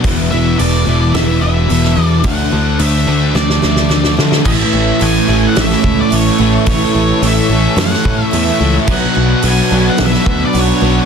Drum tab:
CC |----------------|----------------|x---------------|----------------|
HH |o---o---o---o---|o---o-----------|----o---o---o---|o---o---o---o---|
SD |--------o----o--|--------oooooooo|--------oo------|--------oo------|
BD |o---------------|o---------------|o---------o-----|o---------o-----|

CC |x---------------|
HH |----o---o---o---|
SD |--------oo------|
BD |o---------o-----|